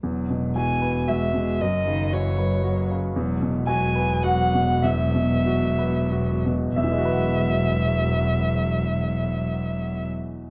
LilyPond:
<<
  \new Staff \with { instrumentName = "Violin" } { \time 3/4 \key e \major \tempo 4 = 96 r4 gis''4 e''4 | dis''4 cis''4. r8 | r4 gis''4 fis''4 | e''2~ e''8 r8 |
e''2.~ | e''2. | }
  \new Staff \with { instrumentName = "Grand piano" } { \time 3/4 \key e \major r4 gis''4 e''4 | dis''4 cis''4. r8 | r4 gis''4 fis''4 | e''2~ e''8 r8 |
<e, e gis fis' b' e'' fis''>2.~ | <e, e gis fis' b' e'' fis''>2. | }
  \new Staff \with { instrumentName = "Grand piano" } { \time 3/4 \key e \major e,8 b,8 fis'8 b'8 fis'8 b,8 | fis,8 cis8 fis'8 b'8 fis'8 cis8 | e,8 b,8 fis'8 b'8 fis'8 b,8 | e,8 b,8 fis'8 b'8 fis'8 b,8 |
r2. | r2. | }
  \new Staff \with { instrumentName = "Cello" } { \clef bass \time 3/4 \key e \major fis4 e4 gis8 gis8 | fis8 dis8 e8 fis8 fis4 | fis4 fis4 fis4 | fis2~ fis8 r8 |
fis2.~ | fis2. | }
  \new Staff \with { instrumentName = "Double bass" } { \clef bass \time 3/4 \key e \major e,,2. | fis,,2. | e,,2.~ | e,,2. |
e,,2.~ | e,,2. | }
>>